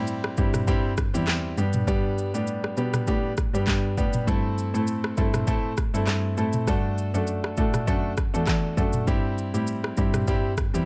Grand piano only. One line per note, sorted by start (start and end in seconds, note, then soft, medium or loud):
0.00 0.34 G3 medium
0.00 0.34 C4 medium
0.00 0.34 E4 medium
0.00 0.35 G4 medium
0.38 0.65 G3 medium
0.38 0.66 C4 medium
0.38 0.66 E4 medium
0.38 0.66 G4 medium
0.67 0.91 G3 medium
0.67 0.91 C4 medium
0.67 0.91 E4 medium
0.67 0.91 G4 loud
1.14 1.54 G3 medium
1.14 1.54 C4 medium
1.14 1.54 E4 medium
1.14 1.54 G4 medium
1.57 1.85 G3 medium
1.57 1.85 B3 medium
1.57 1.86 D4 medium
1.57 1.86 G4 medium
1.87 2.30 G3 medium
1.87 2.30 B3 medium
1.87 2.30 D4 medium
1.87 2.30 G4 loud
2.34 2.74 G3 medium
2.34 2.74 B3 medium
2.34 2.75 D4 medium
2.34 2.75 G4 medium
2.77 3.05 G3 medium
2.77 3.05 B3 medium
2.77 3.06 D4 medium
2.77 3.06 G4 medium
3.07 3.31 G3 medium
3.07 3.31 B3 medium
3.07 3.31 D4 medium
3.07 3.31 G4 loud
3.54 3.94 G3 medium
3.54 3.94 B3 medium
3.54 3.95 D4 medium
3.54 3.95 G4 medium
3.97 4.25 G3 medium
3.97 4.25 B3 medium
3.97 4.26 D4 medium
3.97 4.26 G4 medium
4.27 4.70 A3 medium
4.27 4.70 C4 medium
4.27 4.70 E4 medium
4.27 4.70 A4 medium
4.74 5.14 A3 medium
4.74 5.14 C4 medium
4.74 5.14 E4 medium
4.74 5.15 A4 medium
5.17 5.45 A3 medium
5.17 5.45 C4 medium
5.17 5.46 E4 medium
5.17 5.46 A4 medium
5.47 5.71 A3 medium
5.47 5.71 C4 medium
5.47 5.71 E4 medium
5.47 5.71 A4 loud
5.94 6.34 A3 medium
5.94 6.34 C4 medium
5.94 6.34 E4 medium
5.94 6.35 A4 medium
6.37 6.65 A3 medium
6.37 6.65 C4 medium
6.37 6.66 E4 medium
6.37 6.66 A4 medium
6.67 7.10 A3 medium
6.67 7.10 D4 medium
6.67 7.10 F#4 medium
6.67 7.10 A4 loud
7.14 7.54 A3 medium
7.14 7.54 D4 medium
7.14 7.55 F#4 medium
7.14 7.55 A4 medium
7.57 7.85 A3 medium
7.57 7.86 D4 medium
7.57 7.86 F#4 medium
7.57 7.86 A4 medium
7.87 8.11 A3 medium
7.87 8.11 D4 medium
7.87 8.11 F#4 medium
7.87 8.11 A4 loud
8.34 8.74 A3 medium
8.34 8.74 D4 medium
8.34 8.74 F#4 medium
8.34 8.74 A4 medium
8.77 9.05 A3 medium
8.77 9.05 D4 medium
8.77 9.05 F#4 medium
8.77 9.06 A4 medium
9.07 9.50 G3 medium
9.07 9.50 C4 medium
9.07 9.50 E4 medium
9.07 9.50 G4 loud
9.54 9.94 G3 medium
9.54 9.94 C4 medium
9.54 9.94 E4 medium
9.54 9.95 G4 medium
9.97 10.25 G3 medium
9.97 10.25 C4 medium
9.97 10.26 E4 medium
9.97 10.26 G4 medium
10.28 10.51 G3 medium
10.28 10.51 C4 medium
10.28 10.51 E4 medium
10.28 10.51 G4 loud
10.74 10.85 G3 medium
10.74 10.85 C4 medium
10.74 10.85 E4 medium
10.74 10.85 G4 medium